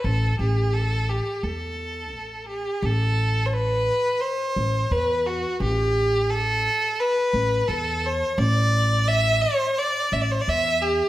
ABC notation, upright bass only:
X:1
M:4/4
L:1/8
Q:1/4=86
K:none
V:1 name="Upright bass" clef=bass
A,,, A,,,3 E,,2 A,,,2 | A,,,4 z A,,, E,,2 | A,,,4 z A,,, E,,2 | A,,,4 z A,,, E,,2 |]